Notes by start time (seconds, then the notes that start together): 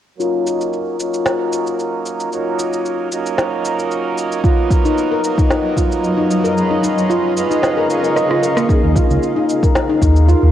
0.18 F#3 A#3 C#4 D#4 F4, cabasa
0.22 A#4
0.47 cabasa
0.61 cabasa
0.73 cabasa
0.97 F#3 A#3 C#4 D#4 A#4, cabasa
1.14 cabasa
1.26 snare, cabasa
1.53 cabasa
1.67 cabasa
1.79 cabasa
2.06 cabasa
2.20 cabasa
2.30 F#3 A#3 C#4 D#4, cabasa
2.34 A#4
2.59 cabasa
2.73 cabasa
2.86 cabasa
3.10 F#3 A#3 C#4 D#4, cabasa
3.14 A#4
3.26 cabasa
3.38 snare, cabasa
3.65 cabasa
3.79 cabasa
3.91 cabasa
4.18 cabasa
4.32 cabasa
4.42 F#3 A#3 B3 D#4 F4 C#5 D#5, kick, cabasa
4.46 A#4
4.71 kick, cabasa
4.85 D#4, cabasa
4.98 cabasa
5.12 A#4
5.22 F#3 A#3 B3 D#4, cabasa
5.26 A#4
5.38 D#4, kick, cabasa
5.50 D#4, snare, cabasa
5.77 F4, kick, cabasa
5.92 cabasa
6.04 cabasa
6.18 D#4
6.31 cabasa
6.44 A#4, cabasa
6.55 G#3 B3 C#4 F4 G#4 F5, cabasa
6.59 B4
6.71 D#4
6.83 D#4, cabasa
6.98 cabasa
7.10 F4, cabasa
7.35 G#3 B3 C#4 F4 B4, cabasa
7.50 D#4, cabasa
7.63 snare, cabasa
7.77 A#4
7.87 G#3 B3 C#4 F4, cabasa
7.91 C#5
8.04 A#4, cabasa
8.16 D#5, cross-stick, cabasa
8.30 F4, cross-stick
8.43 A#4, cabasa
8.57 A#3, cross-stick, cabasa
8.69 D#4 G#4 A#4 F5, kick, cabasa
8.83 D#2
8.95 F4, kick, cabasa
9.10 C#2, cabasa
9.23 cabasa
9.36 D#4
9.49 cabasa
9.63 A#4, kick, cabasa
9.75 snare, cabasa
9.89 D#4
10.02 D#2 D#4, kick, cabasa
10.16 cabasa
10.28 F4, cabasa
10.43 D#2